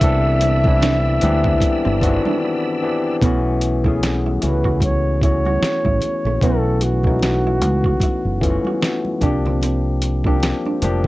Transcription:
Already playing: D3 E3 G3 C4 D4 G4 A4 D5 E5 B5 E6
0.01 C2 E3 B3 C4 D4 A4, kick, closed hi-hat
0.41 C4, closed hi-hat, muted conga
0.64 E3 B3 C4 D4 E4, kick, high conga
0.81 D4, snare, closed hi-hat, muted conga
1.06 high conga
1.21 D2 E3 B3 C4 D4 G4, muted hollow-body jazz guitar stroke, closed hi-hat, muted conga, high conga, low conga
1.44 E4, kick
1.61 muted fingered electric bass stroke, kick, closed hi-hat, muted conga, high conga
1.85 G1 C4
2.02 D#3 B3 C4 D4 F#4, muted hollow-body jazz guitar stroke, kick, closed hi-hat, muted conga
2.08 E3
2.25 D4, high conga
2.82 E3 B3 C4 D4 G4
3.22 B1 E3 A3 B3 C#4 F#4, kick, closed hi-hat
3.61 muted hollow-body jazz guitar stroke, closed hi-hat
3.84 E3 A3 B3 C#4 E4 G#4, kick, high conga
4.03 snare, closed hi-hat
4.26 E4, high conga
4.41 C#2 E3 A3 B3 C#4 F#4 B4, muted hollow-body jazz guitar stroke, closed hi-hat, high conga, low conga
4.64 F#4, kick
4.80 C#5, muted hollow-body jazz guitar stroke, kick, closed hi-hat, muted conga, high conga
5.21 E3 A3 B3 C#4 E4 F#4 C#5, kick, closed hi-hat, muted conga
5.45 F#4, high conga
5.62 snare, closed hi-hat, muted conga
5.85 A1 E4, kick, high conga
6.01 muted hollow-body jazz guitar stroke, closed hi-hat, low conga
6.25 A#1 A3, low conga
6.41 B1 E3 A3 B3 C#4 F#4 A4, kick, closed hi-hat
6.81 F#4, muted hollow-body jazz guitar stroke, closed hi-hat, muted conga
7.03 E3 A3 B3 C#4 E4, kick, high conga
7.07 D#4
7.19 snare, closed hi-hat, muted conga
7.45 E4, high conga
7.61 C#2, muted hollow-body jazz guitar stroke, closed hi-hat, high conga, low conga
7.84 F#4, kick
8.00 E4, muted fingered electric bass stroke, kick, closed hi-hat, muted conga, high conga
8.25 F#1
8.41 E3 A3 B3 C#4 F4, muted hollow-body jazz guitar stroke, kick, closed hi-hat
8.50 F#4
8.65 F#4, high conga
8.81 muted hollow-body jazz guitar stroke, snare, closed hi-hat, muted conga
9.05 high conga
9.21 C2 F3 A#3 C4 D4 G4, kick, closed hi-hat, muted conga, low conga
9.46 C4, low conga
9.62 C4, closed hi-hat, muted conga
10.02 muted hollow-body jazz guitar stroke, closed hi-hat
10.24 F3 A#3 C4 D4 G4, kick, high conga
10.40 snare, closed hi-hat, muted conga
10.65 D4, high conga
10.82 F1 F3 A#3 C4 D4 G4, muted hollow-body jazz guitar stroke, closed hi-hat, muted conga, high conga, low conga

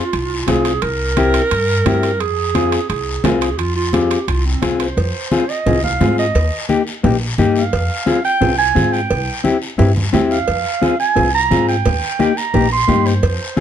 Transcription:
Already playing: F4
0.13 C2, high timbale, long guiro
0.48 C2 C4 F4 G#4, high conga, high timbale, low timbale, short guiro
0.65 high timbale, short guiro
0.82 C2 A#4, high timbale, long guiro
1.17 C4 E4 G4, high conga, high timbale, short guiro
1.34 high timbale, short guiro
1.51 G2, high timbale, long guiro
1.86 G2 C4 E4 G4, high conga, high timbale, low timbale, short guiro
2.03 high timbale, short guiro
2.20 F2 G#4, high timbale, long guiro
2.55 C4 F4 G#4, high conga, high timbale, short guiro
2.72 high timbale, short guiro
2.89 C2 G#4, high timbale, long guiro
3.24 C2 C4 F4 G#4 A#4, high conga, high timbale, low timbale, short guiro
3.41 G#4, high timbale, short guiro
3.58 F2 F4, high timbale, long guiro
3.76 F4
3.93 C4 F4 G4 G#4, high conga, high timbale, short guiro
4.11 high timbale, short guiro
4.28 C2 F4, high timbale, long guiro
4.45 C4
4.62 C2 C4 F4 G#4, high conga, high timbale, short guiro
4.80 C5, high timbale, short guiro
4.97 F2, cowbell, long guiro
5.31 C4 F4 G#4, high conga, short guiro
5.49 D#5, short guiro
5.66 C2 C4 F4 G#4, cowbell, low conga, long guiro
5.84 F5, high conga
6.00 G#2 C4 F4 G#4, high conga, low timbale, short guiro
6.18 D#5, short guiro
6.35 D#2, cowbell, long guiro
6.69 A#3 D#4 G4, high conga, short guiro
6.87 short guiro
7.03 A#1 A#3 D#4 G4, cowbell, low conga, long guiro
7.38 G2 A#3 D#4 G4, high conga, short guiro
7.56 F5, short guiro
7.73 F2, cowbell, long guiro
8.06 C4 F4 G#4, high conga, short guiro
8.25 G5, short guiro
8.41 C2 C4 F4 G#4, cowbell, low conga, long guiro
8.58 G#5
8.75 G#2 C4 F4 G#4, high conga, short guiro
8.93 G5, short guiro
9.10 C2, cowbell, long guiro
9.44 C4 E4 G4, high conga, short guiro
9.62 short guiro
9.78 G2 C4 E4 G4, cowbell, low conga, long guiro
9.97 high conga
10.13 E2 C4 E4 G4, high conga, low timbale, short guiro
10.31 F5, short guiro
10.48 F2, cowbell, long guiro
10.82 C4 F4 G#4, high conga, short guiro
11.00 G#5, short guiro
11.16 C2 C4 F4 G#4, cowbell, low conga, long guiro
11.34 A#5
11.51 G#2 C4 F4 G#4, high conga, short guiro
11.69 G5, short guiro
11.85 D#2, cowbell, low conga, long guiro
12.19 A#3 D#4 G4, high conga, short guiro
12.37 A#5, short guiro
12.54 A#1 A#3 D#4 G4, cowbell, low conga, long guiro
12.72 C6
12.88 G2 A#3 D#4 G4, high conga, low conga, short guiro
13.06 C5, short guiro
13.23 F2, cowbell, long guiro
13.57 C4 F4, high conga

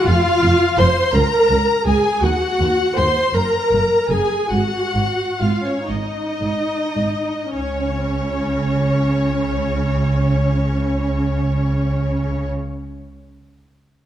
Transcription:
0.06 F1 F2 F4 F5
0.42 F1 F2
0.78 F1 F2 C5 C6
1.14 C#2 A#4 A#5
1.50 C#2
1.86 C#2 G#4 G#5
2.22 D#2 F#4 F#5
2.59 D#2
2.97 D#2 C5 C6
3.34 F#1 F#2 A#4 A#5
3.72 F#1 F#2
4.10 F#1 F#2 G#4 G#5
4.51 G#1 G#2 F#4 F#5
4.95 G#1 G#2
5.41 G#1 G#2 F4 F5
5.65 C#4 C#5
5.88 G#1 G#2 D#4 D#5
6.41 G#1 G#2
6.97 G#1 G#2
7.53 C#2 C#3 C#4 C#5

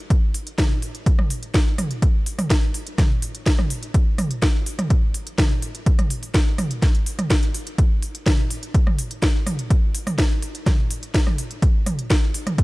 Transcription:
0.10 kick, closed hi-hat
0.34 open hi-hat
0.47 closed hi-hat
0.58 kick, cross-stick, snare, closed hi-hat, mid tom
0.82 open hi-hat
0.95 closed hi-hat
1.06 kick, closed hi-hat
1.19 cross-stick, mid tom
1.30 open hi-hat
1.43 closed hi-hat
1.54 kick, snare, closed hi-hat
1.78 cross-stick, mid tom, open hi-hat
1.91 closed hi-hat
2.02 kick, closed hi-hat
2.26 open hi-hat
2.39 cross-stick, mid tom, open hi-hat
2.50 kick, snare, closed hi-hat
2.74 open hi-hat
2.87 closed hi-hat
2.98 kick, cross-stick, snare, closed hi-hat, mid tom
3.22 open hi-hat
3.35 closed hi-hat
3.46 kick, snare, closed hi-hat
3.59 cross-stick, mid tom
3.70 open hi-hat
3.83 closed hi-hat
3.94 kick, closed hi-hat
4.18 cross-stick, mid tom, open hi-hat
4.31 closed hi-hat
4.42 kick, snare, closed hi-hat
4.66 open hi-hat
4.79 cross-stick, closed hi-hat, mid tom
4.90 kick, closed hi-hat
5.14 open hi-hat
5.27 closed hi-hat
5.38 kick, cross-stick, snare, closed hi-hat, mid tom
5.62 open hi-hat
5.75 closed hi-hat
5.86 kick, closed hi-hat
5.99 cross-stick, closed hi-hat, mid tom
6.10 open hi-hat
6.23 open hi-hat
6.34 kick, snare, closed hi-hat
6.58 cross-stick, mid tom, open hi-hat
6.71 closed hi-hat
6.82 kick, snare, closed hi-hat
6.95 closed hi-hat
7.06 open hi-hat
7.19 cross-stick, closed hi-hat, mid tom
7.30 kick, snare, closed hi-hat
7.43 closed hi-hat
7.54 open hi-hat
7.67 closed hi-hat
7.78 kick, closed hi-hat
8.03 open hi-hat
8.15 closed hi-hat
8.26 kick, cross-stick, snare, closed hi-hat, mid tom
8.51 open hi-hat
8.63 closed hi-hat
8.74 kick, closed hi-hat
8.87 cross-stick, mid tom
8.99 open hi-hat
9.11 closed hi-hat
9.22 kick, snare, closed hi-hat
9.47 cross-stick, mid tom, open hi-hat
9.59 closed hi-hat
9.70 kick, closed hi-hat
9.95 open hi-hat
10.07 cross-stick, mid tom, open hi-hat
10.18 kick, snare, closed hi-hat
10.42 open hi-hat
10.55 closed hi-hat
10.66 kick, cross-stick, snare, closed hi-hat, mid tom
10.91 open hi-hat
11.03 closed hi-hat
11.14 kick, snare, closed hi-hat
11.27 cross-stick, mid tom
11.38 open hi-hat
11.51 closed hi-hat
11.62 kick, closed hi-hat
11.86 cross-stick, mid tom, open hi-hat
11.99 closed hi-hat
12.10 kick, snare, closed hi-hat
12.34 open hi-hat
12.47 cross-stick, closed hi-hat, mid tom
12.58 kick, closed hi-hat

